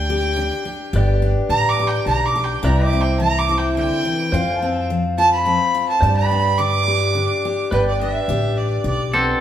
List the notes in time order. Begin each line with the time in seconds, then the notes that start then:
Already playing: D2 D3 D4 G5
0.10 G4
0.36 D3 D4
0.65 G4
0.93 G1 G2 G4 B4 D5
0.98 G5
1.22 D4
1.49 A1 D3 A#5
1.69 D6
1.79 G4
1.87 G5
2.06 B1 D3 D4 A#5
2.25 D6
2.36 G4
2.44 G5
2.63 C2 C3 E4 B4 D5 G5 A#5
2.82 C5 D6
2.90 C4 E5
3.01 G5
3.19 E3 A#5
3.39 D6
3.49 E4
3.58 G5
3.76 D3 G5
4.05 E3
4.32 F2 F4 C5 F5 G5
4.59 C4 A5
4.90 F3
5.18 F4 A5
5.32 B5
5.46 F3 C4
5.75 F4
5.88 A5
6.01 G2 G4 C5 D5 A5
6.16 B5
6.21 B4
6.27 D4 G5
6.58 D3 D6
6.88 G4
7.15 D3 D4
7.45 G4
7.71 G1 G2 B4 D5 G5
7.87 D5
8.01 D4 E5
8.28 A1 D3 G4
8.57 D5
8.84 B1 D3 D5
9.13 B3 C4 A4